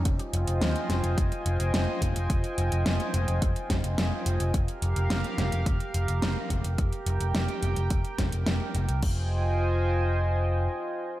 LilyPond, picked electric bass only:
\new Staff \with { instrumentName = "Picked electric bass" } { \clef bass \time 4/4 \key f \minor \tempo 4 = 107 f,,16 r16 f,,16 f,,16 ees,16 r16 f,,16 f,,16 f,,16 r16 f,,16 f,,16 f,,16 r16 f,,16 f,,16 | f,,16 r16 f,,16 f,,16 f,,16 r16 f,,16 f,,16 f,,16 r16 f,,16 f,,16 f,,16 r16 f,,16 f,,16 | f,,16 r16 f,,16 f,,16 f,,16 r16 f,,16 f,,16 f,,16 r16 f,,16 f,,16 f,,16 r16 f,,16 f,,16 | f,,16 r16 f,,16 f,,16 f,,16 r16 f,,16 f,,16 f,,16 r16 f,,16 f,,16 f,,16 r16 f,,16 c,16 |
f,,2. r4 | }